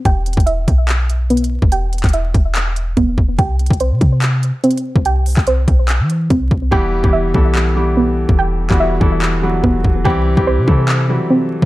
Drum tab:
HH |x-----------x---x---x---x-----------x-----------x-----------x-----------x---x---x---------------|x-----------x--x--x--x--x-----------x-----------x-----------x-----------x-----------------------|x-----------x---x---x---x-----------x-----------x-----------x-----------x---x---x---------------|x-----------o-----------x-----------x-----------x-----------x-----------x-----------------------|
CP |------------------------------------------------x-----------------------------------------------|------------------x-----------------------------x-----------------------------------------------|------------------------------------------------x-----------------------------------------------|------------------x-----------------------------x-----------------------------------------------|
BD |o-----------------o-----------------o-----------------------------------------------------o-----|------------------o-----------------o-----------------------------------o-----------o-----------|o-----------------o-----------------o-----------------------------------------------------o-----|------------------o-----------------o-----------------------------------o-----------o-----------|

HH |------------------------------------------------------------------------------------------------|------------------------------------------------------------------------------------------------|------------------------------------------------------------------------------------------------|
CP |------------------------------------------------x-----------------------------------------------|------------------x-----------------------------x-----------------------------------------------|------------------------------------------------x-----------------------------------------------|
BD |o-----------------o-----------------o-----------------------------------------------------o-----|------------------o-----------------o-----------------------------------o-----------o-----------|o-----------------o-----------------o-----------------------------------------------------o-----|